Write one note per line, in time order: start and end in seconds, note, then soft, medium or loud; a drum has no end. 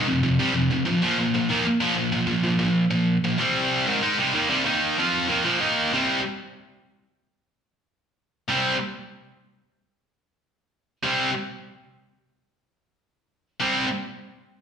0.08 0.22 F2 medium
0.08 0.22 C3 medium
0.23 0.38 F2 medium
0.23 0.38 C3 medium
0.39 0.53 C3 medium
0.39 0.53 G3 loud
0.54 0.69 F2 medium
0.54 0.70 C3 medium
0.70 0.86 F2 medium
0.70 0.85 C3 medium
0.85 1.01 A#2 medium
0.85 1.02 F3 medium
1.02 1.16 A#2 medium
1.02 1.17 F3 loud
1.18 1.33 A#2 medium
1.18 1.34 F3 medium
1.34 1.49 A#2 medium
1.34 1.49 F3 medium
1.49 1.64 D#3 medium
1.49 1.65 A#3 loud
1.67 muted distorted electric guitar stroke medium
1.81 1.95 A#2 medium
1.81 1.95 F3 loud
1.96 2.11 A#2 medium
1.96 2.11 F3 medium
2.12 2.26 A#2 medium
2.12 2.27 F3 medium
2.27 2.42 A#2 medium
2.27 2.43 F3 medium
2.44 2.58 A#2 medium
2.44 2.58 F3 medium
2.59 2.84 A#2 medium
2.59 2.85 F3 medium
2.91 3.16 A#2 medium
2.91 3.16 F3 medium
3.24 3.38 A#2 medium
3.24 3.39 F3 medium
3.38 3.85 C3 medium
3.38 3.86 G3 loud
3.38 3.86 C4 loud
3.87 4.01 G#2 medium
3.87 4.02 D#3 loud
4.02 4.17 G#3 medium
4.02 4.17 D#4 medium
4.19 4.33 C3 loud
4.19 4.34 G3 loud
4.34 4.49 D#3 medium
4.34 4.50 A#3 loud
4.50 4.65 C3 medium
4.50 4.65 G3 medium
4.65 4.96 D#3 medium
4.65 4.97 A#3 medium
4.65 4.97 D#4 loud
4.99 5.28 F3 medium
4.99 5.29 C4 medium
4.99 5.30 F4 loud
5.28 5.44 D#3 medium
5.28 5.44 A#3 loud
5.44 5.60 A#2 medium
5.44 5.60 F3 medium
5.60 5.91 D#3 medium
5.60 5.92 A#3 loud
5.60 5.92 D#4 loud
5.93 6.18 C3 medium
5.93 6.19 G3 medium
5.93 6.19 C4 loud
8.48 8.74 C3 medium
8.48 8.74 G3 medium
8.48 8.74 C4 loud
11.03 11.29 C3 medium
11.03 11.29 G3 medium
11.03 11.30 C4 loud
13.60 13.85 C3 medium
13.60 13.85 G3 medium
13.60 13.86 C4 loud